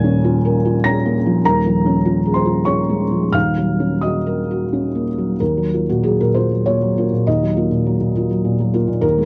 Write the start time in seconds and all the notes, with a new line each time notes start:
Already playing: D#1 D#2 A#2 G#5 G#6
0.04 C#4
0.24 F4
0.45 A#4
0.65 F4
0.84 C#4 A#5 A#6
1.05 A#3
1.26 F3
1.45 D#1 D#2 A#4 A#5
1.66 F3
1.86 C#4
2.05 F4
2.25 G#4
2.34 C5 C6
2.45 F4
2.65 C#4 C#5 C#6
2.89 G#3
3.11 F3
3.33 D#1 D#2 F5 F6
3.58 F#3
3.80 C#4
4.01 F#4 D#5 D#6
4.26 A#4
4.51 F#4
4.73 C#4
4.95 A#3
5.18 F#3
5.40 D#2 A#4
5.57 F#3
5.74 A#3 F4
5.89 A#2 F#4
6.03 F#3 G#4
6.20 A#2 A#4
6.34 A#3 F4 C5
6.51 F#3
6.66 A#2 C#5
6.82 F#3
6.98 A#3 F4
7.13 A#2
7.27 D#2 D#5
7.43 F#3
7.56 A#3 F4
7.71 A#2
7.86 F#3
8.01 A#2
8.16 A#3 F4
8.31 F#3
8.45 A#2
8.60 F#3
8.73 A#3 F4
8.88 A#2
9.01 D#2 A#4
9.18 G#3